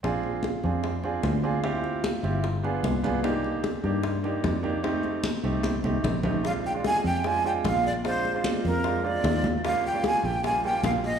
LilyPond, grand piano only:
\new Staff \with { instrumentName = "Grand piano" } { \time 4/4 \key bes \mixolydian \tempo 4 = 150 <c' d' f' aes'>4 r8 <c' d' f' aes'>8. r16 <c' d' f' aes'>8. r16 <c' d' f' aes'>16 r16 | <c' e' f' g'>4 r8 <c' e' f' g'>8 r8 <b d' f' aes'>8. r16 <b d' f' aes'>16 r16 | <bes d' ees' g'>4 r8 <bes d' ees' g'>8. r16 <bes d' ees' g'>8. r16 <bes d' ees' g'>16 r16 | <a c' ees' g'>4 r8 <a c' ees' g'>8. r16 <a c' ees' g'>8. r16 <a c' ees' g'>16 r16 |
<aes c' d' f'>8 r16 <aes c' d' f'>8. r8 <aes c' d' f'>16 r16 <aes c' d' f'>4 r8 | <aes c' d' f'>8 r16 <aes c' d' f'>8. r8 <aes c' d' f'>16 r16 <aes c' d' f'>4 r8 | <g bes des' f'>8 r16 <g bes des' f'>8. r8 <g bes des' f'>16 r16 <g bes des' f'>4 r8 | }